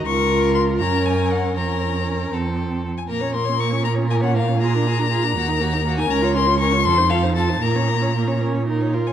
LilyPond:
<<
  \new Staff \with { instrumentName = "Violin" } { \time 6/8 \key bes \minor \tempo 4. = 79 des'''4 c'''8 bes''8 aes''8 ges''8 | bes''4. r4 r16 aes''16 | bes''8 c'''8 des'''8 bes''8 aes''16 ges''16 f''8 | bes''2~ bes''8. aes''16 |
bes''8 c'''8 des'''8 c'''8 f''8 a''8 | bes''4. r4 r16 aes''16 | }
  \new Staff \with { instrumentName = "Violin" } { \time 6/8 \key bes \minor bes'4. bes'4. | bes'4. a'4 r8 | bes'16 des''16 bes'16 des''16 bes'16 des''16 bes'16 des''16 bes'16 des''16 bes'16 des''16 | aes'16 bes'16 aes'16 bes'16 aes'16 bes'16 ges'16 bes'16 ges'16 bes'16 ges'16 bes'16 |
bes'16 des''16 bes'16 des''16 bes'16 des''16 a'16 c''16 a'16 c''16 a'16 c''16 | bes'16 des''16 bes'16 des''16 bes'16 des''16 bes'16 des''16 bes'16 des''16 bes'16 des''16 | }
  \new Staff \with { instrumentName = "Viola" } { \time 6/8 \key bes \minor f'4. des'4. | des'4. c'4 r8 | bes16 des'16 bes16 des'16 bes16 des'16 bes16 des'16 bes16 des'16 bes16 des'16 | f'16 d'16 f'16 d'16 f'16 d'16 bes16 ees'16 bes16 ees'16 bes16 ees'16 |
des'16 f'16 des'16 f'16 des'16 f'16 f'16 ees'16 f'16 ees'16 f'16 ees'16 | bes16 des'16 bes16 des'16 bes16 des'16 des'8 ees'8 f'8 | }
  \new Staff \with { instrumentName = "Cello" } { \clef bass \time 6/8 \key bes \minor des,4. ges,4. | f,4. f,4 r8 | bes,2.~ | bes,4. ees,4. |
des,4. f,4. | bes,2~ bes,8 r8 | }
>>